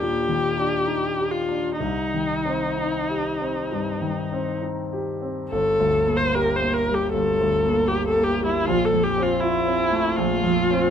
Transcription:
Already playing: grand piano D#2 D#3 D4 D#4 G4
0.01 grand piano A#2, viola G4
0.29 grand piano D#3
0.57 grand piano D4
0.86 grand piano D#4
1.18 grand piano G4
1.31 viola F4
1.49 grand piano D4
1.79 grand piano C2, viola D#4
2.14 grand piano D#3
2.45 grand piano C4
2.77 grand piano D#4
3.09 grand piano G4
3.40 grand piano C4
3.72 grand piano G2
4.02 grand piano D#3
4.32 grand piano C4
4.62 grand piano D#4
4.93 grand piano G4
5.21 grand piano C4
5.50 grand piano G1, viola A4
5.79 grand piano D2
6.07 grand piano A#3
6.16 viola C5
6.35 grand piano G4, viola A#4
6.56 viola C5
6.61 grand piano A#3
6.73 viola A#4
6.87 grand piano G3
6.94 viola G4
7.13 grand piano G1, viola A4
7.41 grand piano D2
7.65 grand piano A#3
7.88 viola G4, grand piano G4
8.08 viola A4
8.16 grand piano A#3
8.24 viola G4
8.41 grand piano G3
8.46 viola E4
8.66 grand piano A#1, viola F4
8.85 viola A4
8.93 grand piano F2
9.03 viola G4
9.18 grand piano C4
9.22 viola F4
9.40 viola E4, grand piano F4
9.68 grand piano C4
9.92 grand piano A3
10.16 grand piano A#1, viola F4
10.43 grand piano F2
10.71 grand piano C4

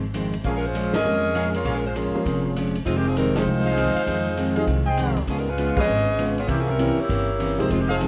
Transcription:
Already playing: upright bass G#1
0.14 hollow-body jazz guitar F2 D#3 G#3 C4, hi-hat pedal, ride
0.33 ride
0.44 upright bass A#1, hollow-body jazz guitar A#2 F3 G#3 C#4, saxophone section F3 A#3 C#4 G#4, trumpet section G#4 A#4 C#5 F5, kick, ride
0.57 saxophone section G#3 C#4 F4 A#4
0.67 saxophone section G#3 C#4 F4 C5
0.74 hollow-body jazz guitar A#2 F3 G#3 C#4, hi-hat pedal, ride
0.93 upright bass G#1, saxophone section C#4 G#4 A#4 D#5, snare, ride
1.04 upright bass F2, hollow-body jazz guitar A#2 F3 G#3 C#4, grand piano F3 G#3 A#3 C#4 G#4
1.34 hollow-body jazz guitar A#2 F3 G#3 C#4, trumpet section G#4 A#4 C#5 F5, hi-hat pedal, ride
1.54 saxophone section A#3 F4 G#4 C#5, ride
1.65 upright bass A#1, hollow-body jazz guitar A#2 F3 G#3 C#4, trumpet section G#4 A#4 C#5 F5, kick, ride
1.75 saxophone section G#3 C#4 F4 A#4
1.85 saxophone section G#3 C#4 F4 C5
1.95 hollow-body jazz guitar A#2 F3 G#3 C#4, saxophone section A#3 F4 G#4 C#5, hi-hat pedal, ride
2.13 grand piano F3 G#3 A#3 C#4 G#4, muted upright bass stroke
2.25 upright bass F1, hollow-body jazz guitar A#2 F3 G#3 C#4, kick, ride
2.56 hollow-body jazz guitar A#2 F3 G#3 C#4, hi-hat pedal, ride
2.75 ride
2.86 upright bass F1, hollow-body jazz guitar F2 D#3 G#3 C4, saxophone section G#3 C4 D#4 F4, kick, ride
2.97 saxophone section D#3 G#3 C4 G4
3.07 saxophone section F3 C4 D#4 G#4
3.16 hollow-body jazz guitar F2 D#3 G#3 C4, saxophone section G3 C4 D#4 A#4, hi-hat pedal, ride
3.35 grand piano F3 G#3 C4 D#4 G#4, saxophone section G#3 D#4 F4 C5, snare, ride
3.45 upright bass C2, hollow-body jazz guitar F2 D#3 G#3
3.49 hollow-body jazz guitar C4
3.65 trumpet section G#4 C5 D#5 F5
3.77 hollow-body jazz guitar F2 D#3 G#3 C4, hi-hat pedal, ride
3.95 trumpet section G#4 C5 D#5 F5, ride
4.06 upright bass F2, hollow-body jazz guitar F2 D#3 G#3, kick, ride
4.11 hollow-body jazz guitar C4
4.37 hollow-body jazz guitar F2 D#3 G#3 C4, hi-hat pedal, ride
4.55 grand piano F3 G#3 C4 D#4 G#4, trumpet section G#4 C5 D#5 F5, ride
4.67 upright bass C2, hollow-body jazz guitar F2 D#3 G#3, kick, ride
4.72 hollow-body jazz guitar C4
4.85 trumpet section G#4 C5 D#5 G5
4.97 hollow-body jazz guitar F2 D#3 G#3 C4, hi-hat pedal, ride
5.16 upright bass D2, ride
5.27 upright bass C#2, hollow-body jazz guitar C#3 G#3 B3 F4, saxophone section F3 B3 C#4 G#4, kick, ride
5.39 saxophone section G3 B3 D#4 A#4
5.49 saxophone section G#3 C#4 F4 B4
5.58 hollow-body jazz guitar C#3 G#3 B3 F4, hi-hat pedal, ride
5.76 grand piano F3 G#3 B3 C#4 G#4, saxophone section C#4 G#4 B4 D#5, trumpet section G#4 B4 C#5 F5, kick, crash
5.87 upright bass G#1, hollow-body jazz guitar C#3 G#3 B3 F4
6.18 hollow-body jazz guitar C#3 G#3 B3 F4, hi-hat pedal, ride
6.38 saxophone section B3 F4 G#4 C#5, ride
6.47 upright bass C2, hollow-body jazz guitar C3 E3 A#3 C#4, saxophone section E3 A#3 C#4 G4, trumpet section C4 A#4 C#5 E5, kick, ride
6.60 saxophone section F3 A#3 C#4 G#4
6.70 saxophone section G3 C#4 E4 A#4
6.78 hollow-body jazz guitar C3 E3 A#3 C#4, grand piano E3 A#3 C4 C#4 G4, hi-hat pedal, ride
7.00 saxophone section A#3 E4 G4 C#5
7.09 upright bass G1, hollow-body jazz guitar C3 E3 A#3 C#4, kick, ride
7.39 hollow-body jazz guitar C3 E3 A#3 C#4, hi-hat pedal, ride
7.58 upright bass C2, grand piano F3 G#3 C4 D#4 G#4, saxophone section A#3 E4 G4 C5, ride
7.69 upright bass F1, hollow-body jazz guitar F2 D#3 G#3 C4, saxophone section G#3 C4 D#4 F4, kick, ride
7.81 saxophone section D#3 G#3 C4 G4
7.88 saxophone section F3 C4 D#4 G#4, trumpet section G#4 C5 D#5 F5
8.00 hollow-body jazz guitar F2 D#3 G#3 C4, grand piano F3 G#3 C4 D#4 G#4, hi-hat pedal, ride

